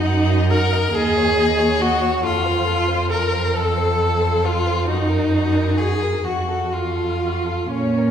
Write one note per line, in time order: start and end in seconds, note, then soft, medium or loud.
0.00 0.93 F#2 medium
0.00 0.50 D#4 medium
0.00 0.52 D#4 medium
0.06 0.32 F#5 medium
0.30 0.51 D#5 medium
0.51 0.93 A#4 medium
0.51 0.97 A#4 medium
0.51 0.74 F#5 medium
0.73 0.92 D#5 soft
0.93 2.21 D#2 medium
0.93 1.82 G#4 medium
0.93 1.83 G#4 medium
0.93 1.18 D#5 medium
1.17 1.39 C#5 medium
1.37 1.59 D#5 medium
1.58 1.79 C#5 medium
1.80 2.24 F#4 medium
1.80 2.25 F#4 medium
1.80 2.03 D#5 soft
2.01 2.22 C#5 soft
2.22 4.89 F2 medium
2.22 3.12 F4 medium
2.22 3.09 F4 medium
2.22 2.47 A4 medium
2.45 2.67 C5 soft
2.65 2.89 A4 medium
2.88 3.10 C5 medium
3.10 3.34 A4 soft
3.10 3.56 A#4 medium
3.10 3.58 A#4 medium
3.32 3.55 C5 medium
3.53 3.78 A4 medium
3.53 4.46 A4 medium
3.53 4.47 A4 medium
3.77 3.99 C5 soft
4.01 4.22 A4 soft
4.21 4.46 C5 medium
4.44 4.88 F4 medium
4.44 4.68 A4 medium
4.66 4.87 C5 soft
4.87 6.24 F#2 medium
4.87 5.80 D#4 medium
4.87 5.79 D#4 medium
4.87 5.11 F#4 soft
5.09 5.33 A#4 soft
5.32 5.56 F#4 soft
5.54 5.76 A#4 soft
5.77 6.04 F#4 soft
5.77 6.26 G#4 medium
5.77 6.25 G#4 medium
6.02 6.23 A#4 soft
6.24 7.69 F2 soft
6.24 6.50 F#4 soft
6.24 6.74 F#4 medium
6.24 6.75 F#4 soft
6.48 6.72 A4 soft
6.71 7.72 F4 medium
6.71 6.97 F#4 soft
6.96 7.20 A4 soft
7.21 7.47 F#4 soft
7.45 7.71 A4 soft
7.71 8.11 A#2 soft
7.71 8.11 C#4 medium
7.71 7.99 C#5 soft
7.97 8.11 A#4 soft